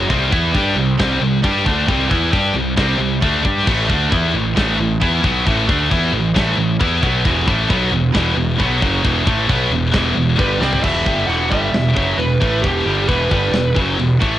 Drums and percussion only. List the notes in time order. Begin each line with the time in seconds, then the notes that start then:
0.10 kick, china
0.32 kick
0.54 kick, china
1.00 kick, snare, china
1.44 kick, china
1.66 kick
1.88 kick, china
2.11 kick
2.33 kick, china
2.77 kick, snare, china
3.22 kick, china
3.45 kick
3.67 kick, crash, china
3.90 kick
4.12 kick, china
4.57 kick, snare, china
5.02 kick, china
5.24 kick
5.47 kick, china
5.69 kick
5.91 kick, china
6.36 kick, snare, china
6.81 kick, china
7.03 kick
7.25 kick, china
7.48 kick
7.70 kick, china
8.14 kick, snare, china
8.60 kick, china
8.82 kick
9.05 kick, china
9.27 kick
9.49 kick, china
9.93 kick, snare, china
10.39 kick, china
10.62 snare
10.73 floor tom
10.84 kick, crash, china
11.06 kick
11.30 china
11.52 kick
11.74 snare, china
11.97 kick
12.20 china
12.42 kick
12.64 kick, china
13.09 kick, china
13.31 kick
13.53 snare, china
13.76 kick
13.99 china
14.22 kick